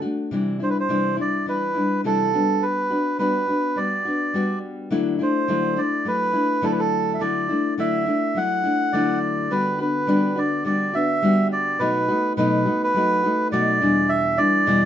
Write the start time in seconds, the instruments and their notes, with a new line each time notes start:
0.02 nylon-string guitar A3 D4 F#4
0.31 nylon-string guitar C3 E3 G3 D4 E4
0.60 nylon-string guitar G3 D4 E4, melodica C5
0.70 melodica B4
0.80 melodica C5
0.89 nylon-string guitar C3 E3 G3 D4 E4
1.17 nylon-string guitar G3 D4 E4
1.21 melodica D5
1.46 nylon-string guitar E3 G3 D4 E4, melodica B4
1.74 nylon-string guitar G3 D4 E4
2.04 nylon-string guitar C3 E3 G3 D4 E4, melodica A4
2.33 nylon-string guitar G3 B3 D4 F#4
2.62 melodica B4
2.90 nylon-string guitar B3 D4 F#4
3.19 nylon-string guitar G3 B3 D4 F#4, melodica B4
3.48 nylon-string guitar B3 D4 F#4
3.76 nylon-string guitar G3 B3 D4 F#4, melodica D5
4.05 nylon-string guitar B3 D4 F#4
4.34 nylon-string guitar G3 B3 D4 F#4
4.90 nylon-string guitar D3 F#3 A3 D4 E4
5.19 nylon-string guitar A3 D4 E4, melodica C5
5.48 nylon-string guitar D3 F#3 A3 D4 E4
5.76 nylon-string guitar A3 D4 E4, melodica D5
6.05 nylon-string guitar F#3 A3 D4 E4, melodica B4
6.33 nylon-string guitar A3 D4 E4
6.62 nylon-string guitar D3 F#3 A3 D4 E4, melodica A4
6.72 melodica B4
6.79 melodica A4
7.14 melodica E5
7.20 nylon-string guitar D3 F#3 A3 D4 E4, melodica D5
7.49 nylon-string guitar A3 D4 E4
7.78 nylon-string guitar D3 F#3 A3 D4 E4, melodica E5
8.06 nylon-string guitar A3 D4 E4
8.35 nylon-string guitar F#3 A3 D4 E4, melodica F#5
8.63 nylon-string guitar A3 D4 E4
8.93 nylon-string guitar D3 F#3 A3 D4 E4, melodica D5
9.51 nylon-string guitar G3 B3 D4 F#4, melodica B4
9.79 nylon-string guitar B3 D4 F#4, melodica B4
10.07 nylon-string guitar G3 B3 D4 F#4
10.36 nylon-string guitar B3 D4 F#4, melodica D5
10.65 nylon-string guitar G3 B3 D4 F#4, melodica D5
10.93 nylon-string guitar B3 D4 F#4, melodica E5
11.22 nylon-string guitar G3 B3 D4 F#4
11.52 melodica D5
11.79 nylon-string guitar B2 F#3 A3 D#4 F#4, melodica B4
12.08 nylon-string guitar A3 D#4 F#4
12.37 nylon-string guitar B2 F#3 A3 D#4 F#4, melodica B4
12.66 nylon-string guitar A3 D#4 F#4
12.83 melodica B4
12.94 nylon-string guitar F#3 A3 D#4 F#4
13.23 nylon-string guitar A3 D#4 F#4
13.52 nylon-string guitar B2 F#3 A3 D#4 F#4, melodica D5
13.81 nylon-string guitar E2 B2 E3 G3 D4 E4
14.09 melodica E5
14.38 nylon-string guitar E3 G3 D4 E4, melodica D5
14.66 nylon-string guitar E2 B2 E3 G3 D4 E4